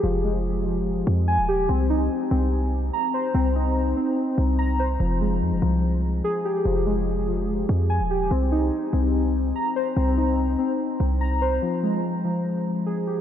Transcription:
<<
  \new Staff \with { instrumentName = "Synth keys" } { \time 4/4 \key f \minor \tempo 4 = 145 <f g' aes'>8 aes4 f4. aes''8 g'8 | c'8 ees'4 c'4. bes''8 c''8 | c'8 ees'4 c'4. bes''8 c''8 | f8 aes4 f4. aes'8 g'8 |
f8 aes4 f4. aes''8 g'8 | c'8 ees'4 c'4. bes''8 c''8 | c'8 ees'4 c'4. bes''8 c''8 | f8 aes4 f4. aes'8 g'8 | }
  \new Staff \with { instrumentName = "808-style bass" } { \clef bass \time 4/4 \key f \minor f,,2~ f,,8 f,8. ees,,8. | c,4 r8 c,4. r4 | c,4. r4 c,4. | f,,4 f,16 f,,16 c,4. r4 |
f,,2~ f,,8 f,8. ees,,8. | c,4 r8 c,4. r4 | c,4. r4 c,4. | r1 | }
>>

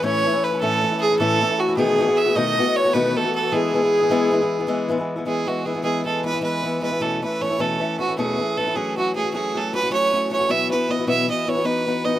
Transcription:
<<
  \new Staff \with { instrumentName = "Fiddle" } { \time 9/8 \key e \major \tempo 4. = 103 cis''4 b'8 a'4 gis'8 a'4 fis'8 | gis'4 e''8 dis''4 cis''8 b'8 a'8 a'8 | gis'2.~ gis'8 r4 | gis'8 fis'8 gis'8 gis'8 a'8 b'8 b'4 b'8 |
a'8 b'8 cis''8 a'4 fis'8 gis'4 a'8 | gis'8 fis'8 gis'8 gis'8 a'8 b'8 cis''4 cis''8 | e''8 b'8 dis''8 e''8 dis''8 cis''8 b'4 dis''8 | }
  \new Staff \with { instrumentName = "Flute" } { \time 9/8 \key e \major cis''4 b'8 a'4 gis'8 a'4 fis'8 | gis'4. dis''4 cis''16. cis''32 b'8 a'8 a'8 | gis'2.~ gis'8 r4 | r1 r8 |
r1 r8 | r1 r8 | r1 r8 | }
  \new Staff \with { instrumentName = "Steel-string acoustic guitar" } { \time 9/8 \key e \major <a, e a cis' e'>8 <e a cis' e'>16 <a cis' e'>8 <a cis' e'>16 <a, e a cis' e'>8 <e a cis' e'>16 <a cis' e'>8 <a cis' e'>16 <a, e a cis' e'>8 <e a cis' e'>16 <a cis' e'>8 <a cis' e'>16 | <b, dis a b fis'>8 <dis a b fis'>16 <a b fis'>8 <a b fis'>16 <b, dis a b fis'>8 <dis a b fis'>16 <a b fis'>8 <a b fis'>16 <b, dis a b fis'>8 <dis a b fis'>16 <a b fis'>8 <a b fis'>16 | <e gis b e'>8 <e gis b e'>16 <gis b e'>8 <gis b e'>16 <e gis b e'>8 <e gis b e'>16 <gis b e'>8 <gis b e'>16 <e gis b e'>8 <e gis b e'>16 <gis b e'>8 <gis b e'>16 | <e gis b e'>8 <e gis b e'>8 <e gis b e'>16 <gis b e'>16 <e gis b e'>8 <e gis b e'>8 <e gis b e'>16 <gis b e'>16 <e gis b e'>8 <e gis b e'>8 <e gis b e'>16 <gis b e'>16 |
<e, b, e a cis' e'>8 <e a cis' e'>8 <e a cis' e'>16 <e a cis' e'>16 <e, b, e a cis' e'>8 <e a cis' e'>8 <e a cis' e'>16 <e a cis' e'>16 <e, b, e a cis' e'>8 <e a cis' e'>8 <e a cis' e'>16 <e a cis' e'>16 | <fis a cis' fis'>8 <fis a cis' fis'>8 <fis a cis' fis'>16 <a cis' fis'>16 <fis a cis' fis'>8 <fis a cis' fis'>8 <fis a cis' fis'>16 <a cis' fis'>16 <fis a cis' fis'>8 <fis a cis' fis'>8 <fis a cis' fis'>16 <a cis' fis'>16 | <b, fis b e' fis' b'>8 <b e' fis' b'>8 <b e' fis' b'>16 <b e' fis' b'>16 <b, fis b e' fis' b'>8 <b e' fis' b'>8 <b e' fis' b'>16 <b e' fis' b'>16 <b dis' fis' b'>8 <b dis' fis' b'>8 <b dis' fis' b'>16 <dis' fis' b'>16 | }
  \new Staff \with { instrumentName = "Accordion" } { \clef bass \time 9/8 \key e \major e1~ e8~ | e1~ e8~ | e1~ e8 | e1~ e8~ |
e1~ e8~ | e1~ e8~ | e1~ e8 | }
>>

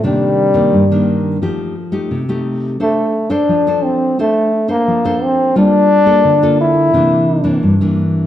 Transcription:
<<
  \new Staff \with { instrumentName = "Nylon-string guitar" } { \time 4/4 \key f \major \tempo 4 = 87 << { <ees bes d'>8. <ees bes d'>8 <ees bes d'>8. <a ees' g'>8 r16 <a ees' g'>8 <a ees' g'>8. | <d' a' c''>8 r16 <d' a' c''>8 <d' a' c''>8. <d' a' c''>8 r16 <d' a' c''>8 <d' a' c''>8. | <bes f' a'>8 r16 <bes f' a'>8 <bes f' a'>8. <e bes d'>8. <e bes d'>8 <e bes d'>8. | } \\ { c4 g,4 f4 c4 | r4 f4 r4 f4 | g4 d4 c4 g,4 | } >> }
  \new Staff \with { instrumentName = "Trombone" } { \time 4/4 \key f \major g2 r2 | a8. d'8. c'8 a8. bes8. c'8 | d'4. e'4. r4 | }
>>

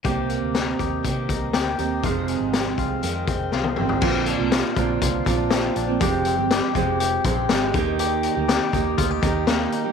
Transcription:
<<
  \new Staff \with { instrumentName = "Clean electric guitar" } { \time 4/4 \key c \minor \tempo 4 = 121 <c g'>8 bes8 ees'8 g'8 ees8 ees'8 g'8 ees'8 | <f, f'>8 aes8 c'8 f'8 ees8 c'8 f'8 c'8 | <bes, f'>8 d'8 f'8 d'8 f'8 d'8 c'8 d'8 | <f, g'>8 c'8 g'8 c'8 g'8 c'8 aes8 ees8 |
<ees g'>8 ees'8 g'8 ees'8 f'16 g'16 ees'8 bes8 ees'8 | }
  \new Staff \with { instrumentName = "Steel-string acoustic guitar" } { \time 4/4 \key c \minor <c bes c' g'>2 <ees bes c' g'>4. <bes c' g'>8 | <f, c ees aes c' aes'>2 <ees aes c' aes'>4. <ees aes c' aes'>8 | <bes, d bes c' f'>8. <bes c' f'>8. <d bes c' f'>4 <d bes c' f'>8 <d bes c' f'>8. <bes c' f'>16 | <f aes c' g'>8. <aes c' g'>8. <f aes c' g'>4 <f aes c' g'>8 <f aes c' g'>8 <ees bes ees' g'>8~ |
<ees bes ees' g'>8. <bes ees' g'>8. <ees bes ees' g'>4 <ees bes ees' g'>8 <ees bes ees' g'>8. <bes ees' g'>16 | }
  \new Staff \with { instrumentName = "Fingered electric bass" } { \clef bass \time 4/4 \key c \minor c,8. d,8. ees,8 c8 c,8 d,8 ees,8 | f,,8. aes,,8. c,8 f,8 f,,8 c,8 aes,,8 | bes,,8. c,8 r16 bes,,8 c,8 bes,,4 bes,,8 | f,,8. g,,8 r16 f,,4 bes,,8 r8 ees,8~ |
ees,8. d,8 r16 ees,8 d,8 ees,4 r8 | }
  \new DrumStaff \with { instrumentName = "Drums" } \drummode { \time 4/4 <hh bd>8 hh8 <hh sn>8 <hh bd>8 <hh bd>8 <hh bd>8 <hh sn>8 hh8 | <hh bd>8 hh8 <hh sn>8 <hh bd>8 hh8 <hh bd>8 sn16 tommh16 toml16 tomfh16 | <cymc bd>8 hh8 <hh sn>8 <hh bd>8 <hh bd>8 <hh bd>8 <hh sn>8 hh8 | <hh bd>8 hh8 <hh sn>8 <hh bd>8 hh8 <hh bd>8 <hh sn>8 <hh bd>8 |
hh8 hh8 <hh sn>8 <hh bd>8 <hh bd>8 <hh bd>8 <hh sn>8 hh8 | }
>>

